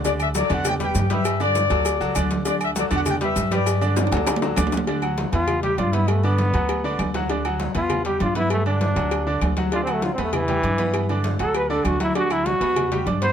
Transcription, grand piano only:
\new Staff \with { instrumentName = "Grand piano" } { \time 4/4 \key d \major \tempo 4 = 198 <d d' d''>4 <fis fis' a'>8 <d d' d''>4 <g g' b'>4 <g g' b'>8~ | <g g' b'>8 <d d' d''>4 <fis fis' a'>4 <fis fis' a'>8 <d d' d''>4 | <d d' d''>4 <fis fis' a'>8 <d d' d''>4 <g g' b'>4 <g g' b'>8~ | <g g' b'>8 <d d' d''>4 <fis fis' a'>4 <fis fis' a'>8 <d d' d''>4 |
<d d' d''>8 <fis fis' fis''>4 <b b' b''>4 <g g' g''>8 <d' d'' d'''>8 <b b' b''>8~ | <b b' b''>8 <d d' d''>4 <fis fis' fis''>4 <d d' d''>4 <fis fis' fis''>8 | <d d' d''>8 <fis fis' fis''>4 <b b' b''>4 <g g' g''>8 <d' d'' d'''>8 <b b' b''>8~ | <b b' b''>8 <d d' d''>4 <fis fis' fis''>4 <d d' d''>4 <fis fis' fis''>8 |
<d d' d''>8 <fis fis' fis''>4 <b b' b''>4 <g g' g''>8 <d' d'' d'''>8 <b b' b''>8~ | <b b' b''>8 <d d' d''>4 <fis fis' fis''>4 <d d' d''>4 <fis fis' fis''>8 | <d d' d''>8 <fis fis' fis''>4 <b b' b''>4 <g g' g''>8 <d' d'' d'''>8 <b b' b''>8 | }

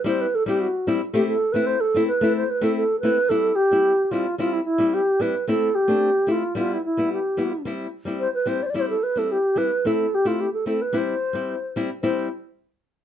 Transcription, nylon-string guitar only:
\new Staff \with { instrumentName = "Nylon-string guitar" } { \time 2/4 \key a \minor \tempo 4 = 110 <g c' e'>8 r16 <g c' e'>16 r8 <g c' e'>16 r16 | <a c' e'>8 r16 <a c' e'>16 r8 <a c' e'>16 r16 | <a c' e'>8 r16 <a c' e'>16 r8 <a c' e'>16 r16 | \key c \major <g c' e'>8 r16 <g c' e'>16 r8 <g c' e'>16 r16 |
<g c' e'>8 r16 <g c' e'>16 r8 <g c' e'>16 r16 | <a c' e'>8 r16 <a c' d'>16 r8 <a c' e'>16 r16 | <g b e'>8 r16 <g b e'>16 r8 <g b e'>16 r16 | <g c' e'>8 r16 <g c' e'>16 r8 <g c' e'>16 r16 |
<g c' e'>8 r16 <g c' e'>16 r8 <g c' e'>16 r16 | <a c' e'>8 r16 <a c' e'>16 r8 <a c' e'>16 r16 | <g c' e'>8 r16 <g c' e'>16 r8 <g c' e'>16 r16 | <g c' e'>8 r4. | }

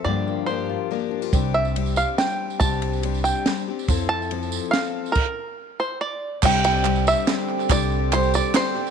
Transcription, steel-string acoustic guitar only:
\new Staff \with { instrumentName = "Steel-string acoustic guitar" } { \time 3/4 \key c \mixolydian \tempo 4 = 141 << { r8 bes8 bes'8 f'8 bes'8 d'16 f'16 | r2. | r2. | r2. |
r2. | r2. | r2. | } \\ { <g, f>2. | r2. | r2. | r2. |
r2. | r2. | r2. | } >> }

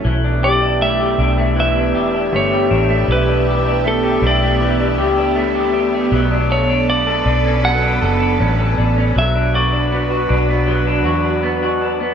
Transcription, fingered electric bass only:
\new Staff \with { instrumentName = "Fingered electric bass" } { \clef bass \time 4/4 \key a \mixolydian \tempo 4 = 79 b,,4. b,,4 e,,8 g,,8 a,,8 | b,,4. b,,4 cis,4. | b,,4. b,,4 fis,,8 a,,8 a,,8 | b,,4. b,,4 e,4. | }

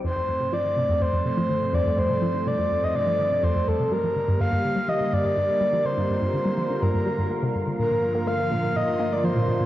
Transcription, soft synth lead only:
\new Staff \with { instrumentName = "Soft synth lead" } { \time 4/4 \key f \mixolydian \tempo 4 = 124 c''4 d''4 c''8 c''4 d''8 | c''4 d''8. ees''16 d''4 c''8 a'8 | bes'4 f''4 ees''8 d''4. | c''2 bes'4 r4 |
bes'4 f''4 ees''8. d''16 c''4 | }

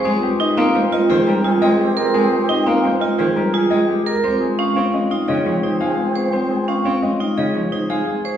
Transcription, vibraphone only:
\new Staff \with { instrumentName = "Vibraphone" } { \time 6/4 \key des \lydian \tempo 4 = 172 c'8 r8 ees'8 c'8 r8 f'8 aes'8 r8 f'8 aes'8 r8 bes'8 | c'8 r8 ees'8 c'8 r8 f'8 aes'8 r8 f'8 aes'8 r8 bes'8 | c'8 r8 des'8 c'8 r8 ees'8 aes'8 r8 ees'8 aes'8 r8 c''8 | c'8 r8 des'8 c'8 r8 ees'8 aes'8 r8 ees'8 aes'8 r8 c''8 | }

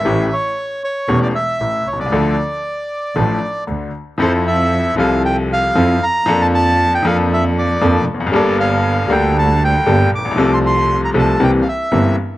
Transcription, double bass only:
\new Staff \with { instrumentName = "Double bass" } { \clef bass \time 4/4 \key d \minor \tempo 4 = 116 a,,8 r4. e,,8 r8 a,,8 c,8 | d,8 r4. a,,8 r8 d,8 r8 | \key f \major f,4. c,4. f,8 r8 | f,4. f,4. f,8 f,,8 |
g,,4. d,4. g,,8 bes,,8 | c,4. c,8 c,8 r8 g,,8 r8 | }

